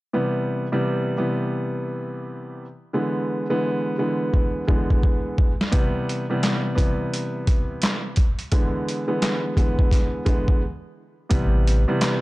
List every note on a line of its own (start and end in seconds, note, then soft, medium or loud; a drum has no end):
0.13 0.66 C3 medium
0.13 0.66 E3 medium
0.13 0.66 G3 medium
0.13 0.66 B3 loud
0.72 1.16 C3 medium
0.72 1.16 E3 medium
0.72 1.17 G3 medium
0.72 1.17 B3 medium
1.18 2.64 C3 medium
1.18 2.64 E3 medium
1.18 2.65 G3 medium
1.18 2.65 B3 loud
2.93 3.45 D3 medium
2.93 3.45 E3 medium
2.93 3.46 G#3 medium
2.93 3.46 B3 medium
3.50 3.95 D3 medium
3.50 3.95 E3 medium
3.50 3.95 G#3 medium
3.50 3.95 B3 loud
3.98 4.64 D3 medium
3.98 4.64 E3 medium
3.98 4.64 G#3 medium
3.98 4.65 B3 loud
4.34 kick medium
4.67 5.51 D3 medium
4.67 5.51 E3 medium
4.67 5.51 G#3 medium
4.67 5.51 B3 medium
4.67 kick medium
4.90 kick medium
5.03 kick medium
5.38 kick loud
5.61 snare medium
5.71 6.24 C3 loud
5.71 6.24 E3 medium
5.71 6.24 G3 medium
5.71 6.24 B3 loud
5.71 kick loud
5.71 closed hi-hat medium
6.09 closed hi-hat medium
6.30 6.74 C3 loud
6.30 6.74 E3 medium
6.30 6.74 G3 medium
6.30 6.75 B3 loud
6.43 snare loud
6.43 clap medium
6.43 closed hi-hat medium
6.75 8.22 C3 medium
6.75 8.22 E3 medium
6.75 8.22 G3 medium
6.75 8.23 B3 loud
6.75 kick medium
6.75 closed hi-hat medium
7.14 closed hi-hat medium
7.47 kick medium
7.47 closed hi-hat medium
7.82 snare loud
7.82 clap loud
7.82 closed hi-hat loud
8.16 kick medium
8.16 closed hi-hat medium
8.39 closed hi-hat soft
8.52 9.03 D3 loud
8.52 9.03 E3 medium
8.52 9.04 G#3 medium
8.52 9.04 B3 medium
8.52 kick loud
8.52 closed hi-hat medium
8.89 closed hi-hat medium
9.07 9.53 D3 medium
9.07 9.53 E3 medium
9.07 9.53 G#3 medium
9.07 9.53 B3 loud
9.22 snare loud
9.22 clap medium
9.22 closed hi-hat medium
9.56 10.22 D3 medium
9.56 10.22 E3 medium
9.56 10.22 G#3 medium
9.56 10.23 B3 medium
9.56 kick medium
9.56 closed hi-hat medium
9.79 kick medium
9.91 kick medium
9.91 snare soft
9.91 closed hi-hat medium
10.25 10.61 D3 medium
10.25 10.61 E3 medium
10.25 10.61 G#3 medium
10.25 10.61 B3 medium
10.25 kick medium
10.25 closed hi-hat medium
10.48 kick loud
11.29 11.86 A1 loud
11.29 11.82 C3 medium
11.29 11.82 E3 medium
11.29 11.82 G3 medium
11.29 11.82 B3 loud
11.29 kick loud
11.29 closed hi-hat medium
11.67 closed hi-hat medium
11.88 12.21 C3 loud
11.88 12.21 E3 medium
11.88 12.21 G3 medium
11.88 12.21 B3 medium
12.01 snare loud
12.01 clap medium
12.01 closed hi-hat medium